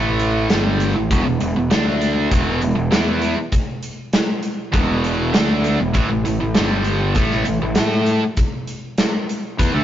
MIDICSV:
0, 0, Header, 1, 4, 480
1, 0, Start_track
1, 0, Tempo, 606061
1, 879, Time_signature, 4, 2, 24, 8
1, 7792, End_track
2, 0, Start_track
2, 0, Title_t, "Overdriven electric guitar"
2, 0, Program_c, 0, 29
2, 0, Note_on_c, 0, 45, 82
2, 0, Note_on_c, 0, 52, 77
2, 0, Note_on_c, 0, 57, 101
2, 391, Note_off_c, 0, 45, 0
2, 394, Note_off_c, 0, 52, 0
2, 394, Note_on_c, 0, 43, 79
2, 395, Note_off_c, 0, 57, 0
2, 400, Note_on_c, 0, 50, 94
2, 406, Note_on_c, 0, 55, 97
2, 749, Note_off_c, 0, 43, 0
2, 751, Note_off_c, 0, 50, 0
2, 753, Note_off_c, 0, 55, 0
2, 754, Note_on_c, 0, 45, 62
2, 756, Note_on_c, 0, 52, 66
2, 875, Note_off_c, 0, 45, 0
2, 877, Note_off_c, 0, 52, 0
2, 877, Note_on_c, 0, 40, 100
2, 878, Note_on_c, 0, 47, 94
2, 986, Note_off_c, 0, 40, 0
2, 992, Note_off_c, 0, 47, 0
2, 996, Note_on_c, 0, 40, 58
2, 1001, Note_on_c, 0, 47, 72
2, 1104, Note_off_c, 0, 40, 0
2, 1110, Note_off_c, 0, 47, 0
2, 1113, Note_on_c, 0, 40, 56
2, 1120, Note_on_c, 0, 47, 70
2, 1227, Note_off_c, 0, 40, 0
2, 1229, Note_off_c, 0, 47, 0
2, 1236, Note_on_c, 0, 40, 57
2, 1239, Note_on_c, 0, 47, 67
2, 1346, Note_off_c, 0, 47, 0
2, 1350, Note_on_c, 0, 50, 81
2, 1352, Note_on_c, 0, 57, 94
2, 1357, Note_off_c, 0, 40, 0
2, 1359, Note_on_c, 0, 62, 94
2, 1826, Note_off_c, 0, 50, 0
2, 1827, Note_off_c, 0, 57, 0
2, 1831, Note_off_c, 0, 62, 0
2, 1832, Note_on_c, 0, 40, 80
2, 1840, Note_on_c, 0, 47, 89
2, 1842, Note_on_c, 0, 52, 91
2, 2067, Note_off_c, 0, 40, 0
2, 2069, Note_off_c, 0, 47, 0
2, 2072, Note_off_c, 0, 52, 0
2, 2079, Note_on_c, 0, 47, 59
2, 2081, Note_on_c, 0, 40, 58
2, 2172, Note_off_c, 0, 40, 0
2, 2176, Note_off_c, 0, 47, 0
2, 2181, Note_on_c, 0, 40, 52
2, 2185, Note_on_c, 0, 47, 59
2, 2300, Note_off_c, 0, 47, 0
2, 2304, Note_on_c, 0, 52, 81
2, 2309, Note_off_c, 0, 40, 0
2, 2312, Note_on_c, 0, 59, 91
2, 2315, Note_on_c, 0, 64, 106
2, 2663, Note_off_c, 0, 52, 0
2, 2667, Note_off_c, 0, 59, 0
2, 2669, Note_off_c, 0, 64, 0
2, 3739, Note_on_c, 0, 40, 81
2, 3744, Note_on_c, 0, 47, 86
2, 3745, Note_on_c, 0, 52, 92
2, 4218, Note_off_c, 0, 47, 0
2, 4220, Note_off_c, 0, 52, 0
2, 4221, Note_off_c, 0, 40, 0
2, 4221, Note_on_c, 0, 50, 81
2, 4223, Note_on_c, 0, 57, 95
2, 4228, Note_on_c, 0, 62, 85
2, 4582, Note_off_c, 0, 50, 0
2, 4583, Note_off_c, 0, 57, 0
2, 4585, Note_off_c, 0, 62, 0
2, 4593, Note_on_c, 0, 40, 56
2, 4595, Note_on_c, 0, 47, 67
2, 4699, Note_off_c, 0, 47, 0
2, 4702, Note_on_c, 0, 45, 97
2, 4712, Note_on_c, 0, 52, 89
2, 4715, Note_off_c, 0, 40, 0
2, 4815, Note_off_c, 0, 45, 0
2, 4824, Note_off_c, 0, 52, 0
2, 4825, Note_on_c, 0, 45, 61
2, 4833, Note_on_c, 0, 52, 61
2, 4939, Note_off_c, 0, 45, 0
2, 4939, Note_off_c, 0, 52, 0
2, 4948, Note_on_c, 0, 45, 58
2, 4948, Note_on_c, 0, 52, 70
2, 5061, Note_off_c, 0, 45, 0
2, 5066, Note_off_c, 0, 52, 0
2, 5070, Note_on_c, 0, 45, 58
2, 5075, Note_on_c, 0, 52, 68
2, 5184, Note_on_c, 0, 43, 82
2, 5187, Note_off_c, 0, 45, 0
2, 5187, Note_off_c, 0, 52, 0
2, 5190, Note_on_c, 0, 50, 90
2, 5190, Note_on_c, 0, 55, 90
2, 5664, Note_off_c, 0, 43, 0
2, 5666, Note_off_c, 0, 50, 0
2, 5666, Note_off_c, 0, 55, 0
2, 5669, Note_on_c, 0, 45, 80
2, 5669, Note_on_c, 0, 52, 86
2, 5670, Note_on_c, 0, 57, 89
2, 5896, Note_off_c, 0, 45, 0
2, 5899, Note_off_c, 0, 52, 0
2, 5905, Note_on_c, 0, 45, 56
2, 5907, Note_off_c, 0, 57, 0
2, 5908, Note_on_c, 0, 52, 67
2, 6023, Note_off_c, 0, 45, 0
2, 6025, Note_off_c, 0, 52, 0
2, 6033, Note_on_c, 0, 45, 53
2, 6035, Note_on_c, 0, 52, 61
2, 6148, Note_off_c, 0, 52, 0
2, 6151, Note_on_c, 0, 57, 86
2, 6155, Note_off_c, 0, 45, 0
2, 6156, Note_on_c, 0, 64, 87
2, 6156, Note_on_c, 0, 69, 92
2, 6508, Note_off_c, 0, 57, 0
2, 6510, Note_off_c, 0, 64, 0
2, 6510, Note_off_c, 0, 69, 0
2, 7591, Note_on_c, 0, 52, 77
2, 7598, Note_on_c, 0, 59, 90
2, 7708, Note_off_c, 0, 52, 0
2, 7712, Note_off_c, 0, 59, 0
2, 7713, Note_on_c, 0, 50, 78
2, 7721, Note_on_c, 0, 57, 90
2, 7792, Note_off_c, 0, 50, 0
2, 7792, Note_off_c, 0, 57, 0
2, 7792, End_track
3, 0, Start_track
3, 0, Title_t, "Fingered electric bass"
3, 0, Program_c, 1, 33
3, 0, Note_on_c, 1, 33, 95
3, 368, Note_off_c, 1, 33, 0
3, 402, Note_on_c, 1, 31, 85
3, 735, Note_off_c, 1, 31, 0
3, 763, Note_on_c, 1, 33, 75
3, 873, Note_off_c, 1, 33, 0
3, 880, Note_on_c, 1, 28, 87
3, 991, Note_off_c, 1, 28, 0
3, 1006, Note_on_c, 1, 28, 76
3, 1114, Note_off_c, 1, 28, 0
3, 1125, Note_on_c, 1, 28, 79
3, 1233, Note_off_c, 1, 28, 0
3, 1244, Note_on_c, 1, 28, 79
3, 1353, Note_off_c, 1, 28, 0
3, 1359, Note_on_c, 1, 38, 89
3, 1807, Note_off_c, 1, 38, 0
3, 1837, Note_on_c, 1, 28, 93
3, 2060, Note_off_c, 1, 28, 0
3, 2083, Note_on_c, 1, 28, 77
3, 2192, Note_off_c, 1, 28, 0
3, 2199, Note_on_c, 1, 28, 71
3, 2305, Note_off_c, 1, 28, 0
3, 2310, Note_on_c, 1, 40, 90
3, 2648, Note_off_c, 1, 40, 0
3, 3755, Note_on_c, 1, 28, 89
3, 4204, Note_off_c, 1, 28, 0
3, 4236, Note_on_c, 1, 38, 85
3, 4572, Note_off_c, 1, 38, 0
3, 4600, Note_on_c, 1, 28, 76
3, 4710, Note_off_c, 1, 28, 0
3, 4715, Note_on_c, 1, 33, 89
3, 4827, Note_off_c, 1, 33, 0
3, 4839, Note_on_c, 1, 33, 70
3, 4950, Note_off_c, 1, 33, 0
3, 4967, Note_on_c, 1, 33, 74
3, 5074, Note_off_c, 1, 33, 0
3, 5086, Note_on_c, 1, 33, 76
3, 5194, Note_off_c, 1, 33, 0
3, 5205, Note_on_c, 1, 31, 87
3, 5650, Note_off_c, 1, 31, 0
3, 5670, Note_on_c, 1, 33, 91
3, 5897, Note_off_c, 1, 33, 0
3, 5921, Note_on_c, 1, 33, 69
3, 6031, Note_off_c, 1, 33, 0
3, 6037, Note_on_c, 1, 33, 78
3, 6149, Note_off_c, 1, 33, 0
3, 6155, Note_on_c, 1, 45, 90
3, 6491, Note_off_c, 1, 45, 0
3, 7599, Note_on_c, 1, 40, 89
3, 7711, Note_off_c, 1, 40, 0
3, 7718, Note_on_c, 1, 38, 91
3, 7792, Note_off_c, 1, 38, 0
3, 7792, End_track
4, 0, Start_track
4, 0, Title_t, "Drums"
4, 155, Note_on_c, 9, 42, 48
4, 235, Note_off_c, 9, 42, 0
4, 394, Note_on_c, 9, 42, 76
4, 398, Note_on_c, 9, 38, 113
4, 473, Note_off_c, 9, 42, 0
4, 477, Note_off_c, 9, 38, 0
4, 636, Note_on_c, 9, 42, 59
4, 715, Note_off_c, 9, 42, 0
4, 877, Note_on_c, 9, 36, 89
4, 880, Note_on_c, 9, 42, 70
4, 956, Note_off_c, 9, 36, 0
4, 959, Note_off_c, 9, 42, 0
4, 1112, Note_on_c, 9, 42, 59
4, 1192, Note_off_c, 9, 42, 0
4, 1353, Note_on_c, 9, 42, 76
4, 1357, Note_on_c, 9, 38, 102
4, 1432, Note_off_c, 9, 42, 0
4, 1437, Note_off_c, 9, 38, 0
4, 1596, Note_on_c, 9, 42, 55
4, 1675, Note_off_c, 9, 42, 0
4, 1834, Note_on_c, 9, 36, 98
4, 1834, Note_on_c, 9, 42, 79
4, 1913, Note_off_c, 9, 36, 0
4, 1913, Note_off_c, 9, 42, 0
4, 2071, Note_on_c, 9, 42, 56
4, 2150, Note_off_c, 9, 42, 0
4, 2311, Note_on_c, 9, 42, 85
4, 2316, Note_on_c, 9, 38, 103
4, 2390, Note_off_c, 9, 42, 0
4, 2395, Note_off_c, 9, 38, 0
4, 2548, Note_on_c, 9, 42, 66
4, 2628, Note_off_c, 9, 42, 0
4, 2788, Note_on_c, 9, 42, 78
4, 2791, Note_on_c, 9, 36, 89
4, 2867, Note_off_c, 9, 42, 0
4, 2870, Note_off_c, 9, 36, 0
4, 3030, Note_on_c, 9, 42, 60
4, 3109, Note_off_c, 9, 42, 0
4, 3270, Note_on_c, 9, 42, 71
4, 3275, Note_on_c, 9, 38, 99
4, 3349, Note_off_c, 9, 42, 0
4, 3354, Note_off_c, 9, 38, 0
4, 3505, Note_on_c, 9, 42, 58
4, 3584, Note_off_c, 9, 42, 0
4, 3750, Note_on_c, 9, 42, 77
4, 3751, Note_on_c, 9, 36, 98
4, 3830, Note_off_c, 9, 36, 0
4, 3830, Note_off_c, 9, 42, 0
4, 3993, Note_on_c, 9, 42, 54
4, 4072, Note_off_c, 9, 42, 0
4, 4228, Note_on_c, 9, 42, 71
4, 4233, Note_on_c, 9, 38, 107
4, 4307, Note_off_c, 9, 42, 0
4, 4312, Note_off_c, 9, 38, 0
4, 4469, Note_on_c, 9, 42, 57
4, 4548, Note_off_c, 9, 42, 0
4, 4705, Note_on_c, 9, 42, 65
4, 4711, Note_on_c, 9, 36, 100
4, 4784, Note_off_c, 9, 42, 0
4, 4790, Note_off_c, 9, 36, 0
4, 4953, Note_on_c, 9, 42, 58
4, 5032, Note_off_c, 9, 42, 0
4, 5184, Note_on_c, 9, 42, 70
4, 5189, Note_on_c, 9, 38, 99
4, 5263, Note_off_c, 9, 42, 0
4, 5268, Note_off_c, 9, 38, 0
4, 5422, Note_on_c, 9, 42, 51
4, 5501, Note_off_c, 9, 42, 0
4, 5661, Note_on_c, 9, 42, 71
4, 5670, Note_on_c, 9, 36, 102
4, 5741, Note_off_c, 9, 42, 0
4, 5749, Note_off_c, 9, 36, 0
4, 5787, Note_on_c, 9, 38, 33
4, 5866, Note_off_c, 9, 38, 0
4, 5902, Note_on_c, 9, 42, 53
4, 5981, Note_off_c, 9, 42, 0
4, 6138, Note_on_c, 9, 42, 87
4, 6142, Note_on_c, 9, 38, 99
4, 6217, Note_off_c, 9, 42, 0
4, 6222, Note_off_c, 9, 38, 0
4, 6272, Note_on_c, 9, 38, 31
4, 6351, Note_off_c, 9, 38, 0
4, 6387, Note_on_c, 9, 42, 62
4, 6466, Note_off_c, 9, 42, 0
4, 6627, Note_on_c, 9, 42, 77
4, 6631, Note_on_c, 9, 36, 90
4, 6706, Note_off_c, 9, 42, 0
4, 6710, Note_off_c, 9, 36, 0
4, 6871, Note_on_c, 9, 42, 62
4, 6950, Note_off_c, 9, 42, 0
4, 7110, Note_on_c, 9, 42, 78
4, 7114, Note_on_c, 9, 38, 102
4, 7189, Note_off_c, 9, 42, 0
4, 7193, Note_off_c, 9, 38, 0
4, 7360, Note_on_c, 9, 42, 60
4, 7439, Note_off_c, 9, 42, 0
4, 7598, Note_on_c, 9, 36, 95
4, 7600, Note_on_c, 9, 42, 80
4, 7677, Note_off_c, 9, 36, 0
4, 7679, Note_off_c, 9, 42, 0
4, 7792, End_track
0, 0, End_of_file